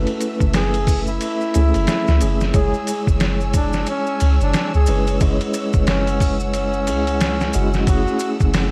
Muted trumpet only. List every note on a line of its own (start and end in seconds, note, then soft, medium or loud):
0.56 1.02 G#4 medium
1.09 2.44 E4 loud
2.56 3.02 G#4 medium
3.56 3.86 D4 medium
3.90 4.36 C#4 loud
4.42 4.71 D4 medium
4.75 5.17 G#4 medium
5.90 6.36 C#4 medium
6.43 7.78 C#4 medium
7.88 8.35 F#4 loud